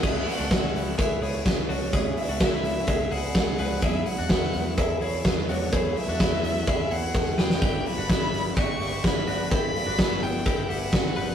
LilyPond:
<<
  \new Staff \with { instrumentName = "Violin" } { \time 4/4 \key cis \phrygian \tempo 4 = 127 e''8 fis''4. e''8 cis''8 b'8 cis''8~ | cis''8 e''2 fis''4. | e''8 fis''4. e''8 cis''8 b'8 cis''8~ | cis''8 e''2 fis''4 g''8~ |
g''8 b''4. cis'''4 b''4 | b''4. g''4 fis''4. | }
  \new Staff \with { instrumentName = "Clean electric guitar" } { \time 4/4 \key cis \phrygian <e' gis'>8. <d' fis'>16 <cis' e'>4 <e' gis'>8 <e' gis'>4 <d' fis'>8 | <e' gis'>8. <d' fis'>16 <cis' e'>4 <e' gis'>8 <e' gis'>4 <gis' b'>8 | <e' gis'>8. <d' fis'>16 <b e'>4 <e' gis'>8 <e' gis'>4 <d' fis'>8 | <e' gis'>8. <d' fis'>16 <b e'>4 <e' gis'>8 <e' gis'>4 <gis' b'>8 |
<e' g'>8. <d' fis'>16 <b e'>4 <e' g'>8 <e' g'>4 <d' fis'>8 | <e' g'>8. <d' fis'>16 <b e'>4 <e' g'>8 <e' g'>4 <g' b'>8 | }
  \new Staff \with { instrumentName = "Steel-string acoustic guitar" } { \clef bass \time 4/4 \key cis \phrygian <cis e gis b e'>8 <e gis b e'>16 <gis b e'>8. <e gis b e'>4. <e gis b e'>8 <e gis b e'>8 | <cis e gis b e'>8 <e gis b e'>16 <gis b e'>8. <e gis b e'>4. <e gis b e'>8 <e gis b e'>8 | <e, b, fis gis b e'>8 <fis gis b e'>16 <fis gis b e'>8. <fis gis b e'>4. <fis gis b e'>8 <fis gis b e'>8 | <e, b, fis gis b e'>8 <fis gis b e'>16 <fis gis b e'>8. <fis gis b e'>4. <fis gis b e'>8 <fis gis b e'>8 |
<g, d e g b e'>8 <e g b e'>16 <e g b e'>8. <e g b e'>4. <e g b e'>8 <e g b e'>8 | <g, d e g b e'>8 <e g b e'>16 <e g b e'>8. <e g b e'>4. <e b e'>8 <e g b e'>8 | }
  \new Staff \with { instrumentName = "Picked electric bass" } { \clef bass \time 4/4 \key cis \phrygian cis,8 r16 cis,16 cis,8 cis,8 cis,8 cis,8 cis,8 cis,8 | cis,8 r16 cis,16 r8 cis,8 cis,8 cis,8 cis,8 cis,8 | e,8 r16 e,16 e,8 e,8 e,8 e,8 e,8 e,8 | e,8 r16 e,16 e,8 e,8 e,8 e,8 e,8 e,8 |
g,,8 r16 g,,16 g,,8 g,,8 g,,8 g,,8 g,,8 g,,8 | g,,8 r16 g,,16 g,,8 g,,8 g,,8 g,,8 g,,8 g,,8 | }
  \new DrumStaff \with { instrumentName = "Drums" } \drummode { \time 4/4 <cymc bd>8 hho8 <hh bd sn>8 hho8 <hh bd>8 hho8 <hh bd sn>8 hho8 | <hh bd>8 hho8 <hh bd sn>8 hho8 <hh bd>8 hho8 <hh bd sn>8 hho8 | <hh bd>8 hho8 <hh bd sn>8 hho8 <hh bd>8 hho8 <hh bd sn>8 hho8 | <hh bd>8 hho8 <hh bd sn>8 hho8 <hh bd>8 hho8 <bd sn>8 sn16 sn16 |
<hh bd>8 hho8 <hh bd sn>8 hho8 <hh bd>8 hho8 <hh bd sn>8 hho8 | <hh bd>8 hho8 <hh bd sn>8 hho8 <hh bd>8 hho8 <hh bd sn>8 hho8 | }
>>